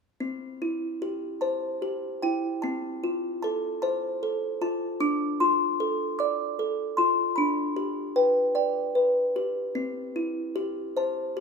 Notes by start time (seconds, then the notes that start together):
0.20 C4
0.62 E4
1.02 G4
1.41 C5 A5
1.82 G4
2.22 E4 G5
2.62 C4 A5
3.04 F4
3.43 A4 A5
3.82 C5 A5
4.23 A4
4.61 F4 A5
5.00 D4 D6
5.40 F4 C6
5.80 A4
6.19 D5 D6
6.59 A4
6.97 F4 C6
7.36 D4 B5
7.76 G4
8.16 B4 G5
8.55 D5 G5
8.95 B4
9.36 G4
9.75 C4
10.16 E4
10.56 G4
10.97 C5 A5
11.37 G4